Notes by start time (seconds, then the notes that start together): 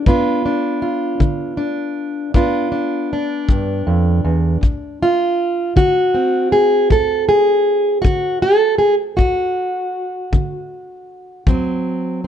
0.06 G2 B3 D4 F4, kick
0.46 D4
0.82 F4
1.20 D3, kick
1.57 D4
2.34 G2 B3 D4 F4, kick
2.72 D4
3.13 D4
3.49 G2, kick
3.87 F2
4.25 E2
4.61 D2, kick
5.03 F4
5.76 D3 F#4, kick
6.14 C4
6.52 G#4
6.90 D2 A4, kick
7.29 G#4
8.02 D3 F#4, kick
8.42 A4
8.78 G#4
9.17 D2 F#4, kick
10.33 D3, kick
11.47 D2 F#3 C4, kick